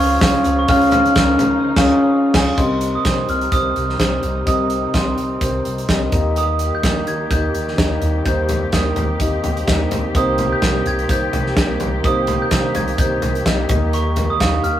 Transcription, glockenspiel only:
0.00 C#6
0.59 C#6
0.69 F6
0.93 F6
2.58 C6
2.95 D#6
3.30 F6
3.52 D#6
4.47 D#6
4.95 C6
6.38 D#6
6.75 G6
7.08 G#6
7.31 G6
8.26 G6
8.73 D#6
10.16 D#6
10.53 G6
10.87 G#6
11.11 G6
12.05 D#6
12.42 G6
12.76 G#6
12.99 G6
13.94 C#6
14.30 D#6
14.64 F6

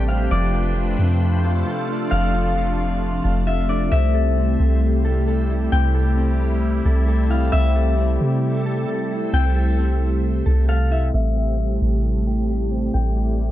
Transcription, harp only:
0.08 F5
0.31 D5
2.11 F5
3.47 E5
3.69 D5
3.92 E5
5.72 G5
7.30 F5
7.52 E5
9.34 G5
10.69 F5
10.92 E5
11.14 E5
12.94 G5

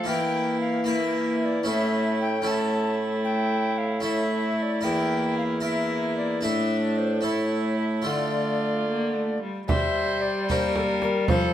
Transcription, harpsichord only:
0.04 E3 A#3 E4 A#4
0.84 A#3 E4 A#4
1.63 A2 C#4 E4 A4
2.42 C#4 E4 A4
4.00 C#4 E4 A4
4.81 E2 E4 A#4
5.60 E4 A#4
6.41 A2 D4 E4 A4
7.21 A3 E4 A4
8.02 D3 A3 F4 A4
9.68 G3
10.49 A#3 D4 G4
11.29 F3

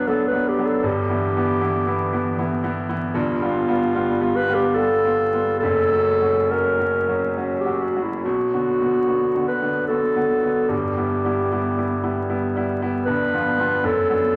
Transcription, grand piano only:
Already playing: B1 F#3 B3 D4
0.08 F#3 B3 D4
0.33 F#3 B3 D4
0.58 F#3 B3 D4
0.82 G1 G2
1.09 E3 B3 E4
1.37 E3 B3 E4
1.61 E3 B3 E4
1.87 E3 B3 E4
2.13 E3 B3 E4
2.38 E3 B3 E4
2.63 E3 B3 E4
2.89 E3 B3 E4
3.14 G1 G2
3.42 G3 B3 F4
3.68 G3 B3 F4
3.94 G3 B3 F4
4.21 G3 B3 F4
4.49 G3 B3 F4
4.76 G3 B3 F4
5.04 G3 B3 F4
5.33 G3 B3 F4
5.62 F#1 F#2
5.92 F#3 C#4 F#4
6.22 F#3 C#4 F#4
6.50 F#3 C#4 F#4
6.79 F#3 C#4 F#4
7.09 F#3 C#4 F#4
7.37 F#3 C#4 F#4
7.66 F#3 C#4 F#4
7.96 F#3 C#4 F#4
8.25 B1
8.54 D3 B3 F#4
8.81 D3 B3 F#4
9.08 D3 B3 F#4
9.35 D3 B3 F#4
9.62 D3 B3 F#4
9.89 D3 B3 F#4
10.16 D3 B3 F#4
10.43 D3 B3 F#4
10.68 G1 G2
10.97 G3 B3 E4
11.24 G3 B3 E4
11.51 G3 B3 E4
11.77 G3 B3 E4
12.03 G3 B3 E4
12.30 G3 B3 E4
12.56 G3 B3 E4
12.82 G3 B3 E4
13.07 G1 G2
13.33 F3 B3 F4
13.58 F3 B3 F4
13.84 F#2
14.10 F#3 B3 D4

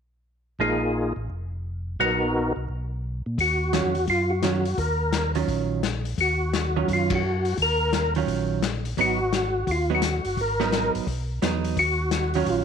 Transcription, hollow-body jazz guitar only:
0.60 F3 G#3 D#4
2.00 F#3 B3 D#4
3.73 D#3 F#3 C#4 F4
4.43 D#3 F#3 C#4 F4
5.35 D#3 F#3 C#4 F4
6.76 D#3 F#3 C#4 F4
8.16 D#3 F#3 C#4 F4
8.98 F#3 B3 D#4
9.90 F#3 B3 D#4
10.60 F#3 B3 D#4
11.42 F#3 B3 D#4
12.35 D#3 F#3 C#4 F4

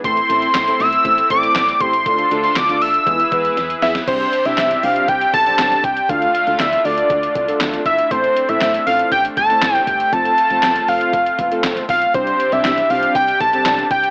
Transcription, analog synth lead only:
0.05 C6
0.80 E6
1.31 D6
1.81 C6
2.44 C6
2.57 D6
2.82 E6
3.83 E5
4.08 C5
4.46 E5
4.83 F5
5.09 G5
5.34 A5
5.84 G5
6.09 F5
6.60 E5
6.85 D5
7.86 E5
8.11 C5
8.49 E5
8.87 F5
9.12 G5
9.37 A5
9.75 G5
9.88 G5
10.13 A5
10.89 F5
11.90 F5
12.15 C5
12.53 E5
12.90 F5
13.16 G5
13.41 A5
13.91 G5

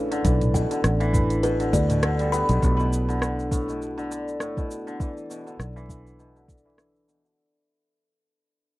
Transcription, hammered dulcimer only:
Already playing: C#3
0.11 D3
0.25 E3
0.54 B2
0.71 D3
1.00 E3
1.13 E3
1.43 B2
1.60 D3
1.90 B2
2.03 D3
2.19 G3
2.33 B3
2.49 B2
2.62 A2
2.79 B2
3.09 D3
3.22 D3
3.51 A2
3.68 B2
3.98 D3
4.11 D3
4.41 A2
4.57 B2
4.87 D3
5.00 E3
5.30 B2
5.47 D3
5.76 E3
5.89 E3
6.19 B2
6.36 D3
6.65 E3
6.78 E3
7.08 B2
7.24 D3

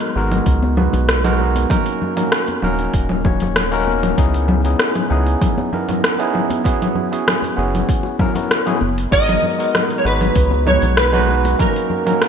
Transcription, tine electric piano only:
Already playing: G#3 B3 D#4 F#4 A#4
0.15 G#3 B3 D#4 F#4 A#4
0.77 G#3 B3 D#4 F#4 B4
1.24 G#3 B3 D#4 F#4 A#4
1.69 A#3 C#4 D#4 F#4 A#4
2.16 A#3 C#4 D#4 F#4 A#4
2.62 A#3 C#4 D#4 F#4 A#4
3.24 A#3 C#4 D#4 F#4 C#5
3.71 A#3 C#4 D#4 F#4 A#4
4.17 B3 C#4 D#4 E4 G#4
4.64 B3 C#4 D#4 E4 G#4
5.10 B3 C#4 D#4 E4 G#4
5.73 B3 C#4 D#4 E4 A#4
6.19 B3 C#4 D#4 E4 G#4
6.64 B3 C#4 E4 F#4 G#4
7.11 B3 C#4 E4 F#4 G#4
7.56 B3 C#4 E4 F#4 G#4
8.19 B3 C#4 E4 F#4 A#4
8.34 B3 C#4 E4 F#4 A#4
8.65 B3 C#4 E4 F#4 G#4
9.11 G#3 B3 D#4 F#4 A#4
9.58 G#3 B3 D#4 F#4 A#4
10.03 G#3 B3 D#4 F#4 B4
10.65 G#3 B3 D#4 F#4 B4
11.12 G#3 B3 D#4 F#4 B4
11.58 A#3 C#4 D#4 F#4 A#4
12.05 A#3 C#4 D#4 F#4 A#4

